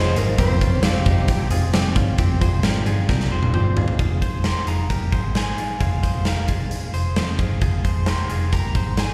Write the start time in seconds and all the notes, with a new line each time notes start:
Already playing: F1 D#3 F3 G#3 C#4 D#4 F4 G#4 C5 C#5
0.16 G#1 D#4 F4 G#4 A#4 C#5, closed hi-hat
0.38 F1 F3 G3 C4 F4 G4 C5, kick, closed hi-hat
0.60 F1 C4 C#4 F4 C5, kick, closed hi-hat
0.83 F3 G3 C4 F4 G4 C5 F5, snare, closed hi-hat
1.05 F1 C4 D#4 F4 G4 C5, kick, closed hi-hat
1.28 G3 C4 F4 C5, kick, closed hi-hat
1.50 F1 C4 F4 G#4 C5, closed hi-hat
1.73 F3 G3 C4 F4 G4 C5, snare, closed hi-hat
1.96 G1 C4 C#4 F4 C5, kick, closed hi-hat
2.18 F1 F3 G3 C4 F4 G4 C5, kick, closed hi-hat
2.41 F1 C4 F4 G#4 C5, kick, closed hi-hat
2.63 G#1 F3 G3 C4 F4 G4 A#4 C5, snare, closed hi-hat
2.85 G1 C4 F4 G#4 C5, closed hi-hat
3.08 C2 G3 C4 F4 G4 A#4 C5, kick, snare
3.20 snare
3.31 F1 C4 F4 G#4 C5
3.43 high tom
3.54 G1 F3 G3 C4 F4 G4 C5, mid tom
3.76 G1 C4 F4 G#4 C5, floor tom
3.88 floor tom
3.99 F1 F4 G#4, kick, closed hi-hat
4.22 G#4 C5, kick, closed hi-hat
4.33 F1
4.44 G4 A#4 C6, snare, closed hi-hat
4.66 F1 F4 G#4 A#5, closed hi-hat
4.90 G4 A#4, kick, closed hi-hat
5.12 G#1 G#4 C5, kick, closed hi-hat
5.35 G#4 C5 G#5, snare, closed hi-hat
5.58 F4 G#4, closed hi-hat
5.80 F1 F4 G#4 F5, kick, closed hi-hat
6.03 G#4 C5, kick, snare, closed hi-hat
6.14 F1
6.25 G4 A#4 F5, snare, closed hi-hat
6.48 F4 G#4, kick, closed hi-hat
6.71 closed hi-hat
6.93 F1 G#4 C5, closed hi-hat
7.16 F2 G#4 C5, snare, closed hi-hat
7.39 G1 F4 G#4, kick, closed hi-hat
7.61 F1 F4 G#4, kick, closed hi-hat
7.84 G#4 C5, kick, closed hi-hat
7.95 F1
8.06 G4 A#4 C6, snare, closed hi-hat
8.30 F1 F4 G#4, closed hi-hat
8.53 G4 A#4 A#5, kick, closed hi-hat
8.75 G#1 G#4 C5, kick, closed hi-hat
8.97 G#4 C5 G#5, snare, closed hi-hat